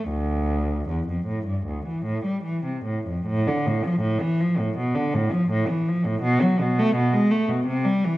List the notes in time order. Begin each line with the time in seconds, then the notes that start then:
0.09 D2
0.89 E2
1.08 F2
1.27 A2
1.47 G2
1.66 D2
1.86 E3
2.05 A2
2.25 G3
2.43 E3
2.65 C3
2.85 A2
3.07 F2
3.26 A2
3.48 D3
3.67 A2
3.85 F3
4.01 A2
4.21 E3
4.40 F3
4.59 A2
4.78 B2
4.95 D3
5.14 A2
5.32 F3
5.51 A2
5.68 E3
5.88 F3
6.06 A2
6.22 B2
6.42 F#3
6.61 B2
6.79 A3
6.96 B2
7.13 G#3
7.31 A3
7.48 B2
7.66 C3
7.85 G3
8.05 E3